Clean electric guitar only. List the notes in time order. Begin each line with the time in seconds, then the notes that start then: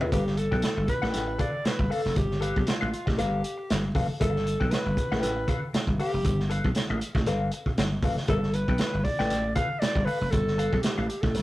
0.01 F4 B4 E5
0.13 A4 B4 F5
0.26 muted clean electric guitar stroke
0.37 muted clean electric guitar stroke
0.51 A4 B4 G5
0.63 muted clean electric guitar stroke
0.77 muted clean electric guitar stroke
1.02 A4 B4 G5
1.28 muted clean electric guitar stroke
1.39 A4 B4 F5
1.53 muted clean electric guitar stroke
1.65 muted clean electric guitar stroke
1.90 A4 B4 F5
2.04 muted clean electric guitar stroke
2.41 A4 B4 F5
2.66 muted clean electric guitar stroke
2.81 A4 B4 F5
2.93 muted clean electric guitar stroke
3.06 muted clean electric guitar stroke
3.18 A4 B4 F5
3.58 muted clean electric guitar stroke
3.84 muted clean electric guitar stroke
3.95 A4 B4 F5
4.09 muted clean electric guitar stroke
4.20 A4 B4 F5
4.35 muted clean electric guitar stroke
4.45 muted clean electric guitar stroke
4.60 A4 B4 G5
4.72 muted clean electric guitar stroke
4.86 muted clean electric guitar stroke
5.12 A4 B4 G5
5.36 muted clean electric guitar stroke
5.47 A4 B4 F5
5.62 muted clean electric guitar stroke
5.73 muted clean electric guitar stroke
5.99 A4 B4 F5
6.50 A4 B4 F5
6.76 muted clean electric guitar stroke
6.90 A4 B4 F5
7.01 muted clean electric guitar stroke
7.16 muted clean electric guitar stroke
7.27 A4 B4 F5
7.53 muted clean electric guitar stroke
7.68 muted clean electric guitar stroke
7.79 muted clean electric guitar stroke
8.04 A4 B4 F5
8.18 muted clean electric guitar stroke
8.28 A4 B4 F5
8.43 muted clean electric guitar stroke
8.54 muted clean electric guitar stroke
8.69 A4 B4 G5
8.80 muted clean electric guitar stroke
8.94 muted clean electric guitar stroke
9.19 A4 B4 G5
9.45 muted clean electric guitar stroke
9.56 A4 B4 F5
9.70 muted clean electric guitar stroke
9.81 muted clean electric guitar stroke
10.06 A4 B4 F5
10.21 muted clean electric guitar stroke
10.58 A4 B4 F5
10.84 muted clean electric guitar stroke
10.98 A4 B4 F5
11.09 muted clean electric guitar stroke
11.23 muted clean electric guitar stroke
11.35 muted clean electric guitar stroke